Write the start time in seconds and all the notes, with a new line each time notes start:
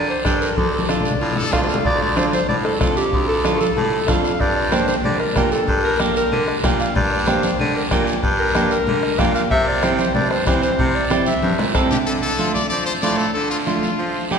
Already playing: D3
0.10 C5
0.25 G2 D4 G4 A4 D5, bombo low, bombo rim, high conga, short guiro
0.41 A#4, short guiro
0.57 D2 A4, bombo low, high conga, long guiro
0.73 A4
0.79 high conga
0.89 D4 F4 A4 D5, bombo rim, high conga, short guiro
1.01 low conga
1.05 short guiro
1.11 low conga
1.21 A2 F4, long guiro
1.32 low conga
1.36 A4
1.43 low conga
1.53 D2 D4 F4 A4 F5, bombo low, bombo rim, low conga, short guiro
1.64 low conga
1.69 F5, short guiro
1.74 low conga
1.85 D2 D5, bombo low, long guiro
2.02 D5
2.17 D4 F4 A4 C5, bombo rim, high conga, short guiro
2.33 C5, high conga, short guiro
2.49 A2 D5, low conga, long guiro
2.65 A4, bombo rim
2.80 F2 D4 F4 A4, bombo low, bombo rim, high conga, low conga, short guiro
2.97 G4, short guiro
3.13 D2, bombo low, long guiro
3.29 A4
3.44 D4 F4 A4, bombo rim, high conga, short guiro
3.61 A4, high conga, short guiro
3.76 A2, low conga, long guiro
4.08 F2 D4 F4 A4 F5, bombo low, bombo rim, high conga, low conga, short guiro
4.24 F5, short guiro
4.40 G2 D5, bombo low, long guiro
4.56 D5
4.72 A#3 D4 G4 C5, bombo rim, high conga, short guiro
4.88 C5, high conga, short guiro
5.04 D3 D5, low conga, long guiro
5.20 A#4, bombo rim
5.36 A#2 A#3 D4 G4 A#4, bombo low, bombo rim, high conga, low conga, short guiro
5.52 A4, short guiro
5.68 G2, bombo low, long guiro
5.84 A#4
6.00 A#3 D4 G4, bombo rim, high conga, short guiro
6.16 A#4, short guiro
6.32 D3, low conga, long guiro
6.48 bombo rim
6.64 A#2 A#3 D4 G4 F5, bombo low, bombo rim, high conga, low conga, short guiro
6.80 F5, short guiro
6.96 G2 D5, bombo low, low conga, long guiro
7.12 D5
7.27 A#3 D4 G4 C5, bombo rim, high conga, short guiro
7.43 C5, high conga, short guiro
7.59 D3 D5, low conga, long guiro
7.76 A#4
7.91 A#2 A#3 D4 G4 A#4, bombo low, bombo rim, high conga, short guiro
8.07 short guiro
8.23 G2, bombo low, long guiro
8.39 A#4
8.55 A#3 D4 G4, bombo rim, high conga, short guiro
8.71 A#4, short guiro
8.87 D3, low conga, long guiro
9.03 bombo rim
9.19 A#2 A#3 D4 G4 F5, bombo low, bombo rim, high conga, low conga, short guiro
9.35 F5, short guiro
9.51 C3 E5, bombo low, long guiro
9.68 D5
9.83 C4 E4 G4 C5, bombo rim, high conga, short guiro
9.99 C5, high conga, short guiro
10.15 G2 D5, low conga, long guiro
10.31 C5, bombo rim
10.47 E3 C4 E4 G4 C5, bombo low, bombo rim, high conga, short guiro
10.62 C5, short guiro
10.79 C3, bombo low, low conga, long guiro
10.95 D5
11.10 C4 E4 G4, bombo rim, high conga, short guiro
11.26 E5, high conga, short guiro
11.43 G2, high conga, long guiro
11.59 A#2, bombo rim, low conga
11.74 C3 C4 E4 A4, bombo low, bombo rim, short guiro
11.91 D3 G4, low conga, short guiro
12.06 D3 A4, long guiro
12.22 A4
12.39 A3 D4 F4, high conga, short guiro
12.54 D5, high conga, short guiro
12.70 F3 D5, long guiro
12.86 C5
13.02 A2 A3 D4 F4 D5, high conga, short guiro
13.17 A4, short guiro
13.34 D3 A4, long guiro
13.50 F4
13.66 A3 D4 F4, high conga, short guiro
13.83 high conga, short guiro
13.99 F3, long guiro
14.31 A2 A3 D4 G4, high conga, short guiro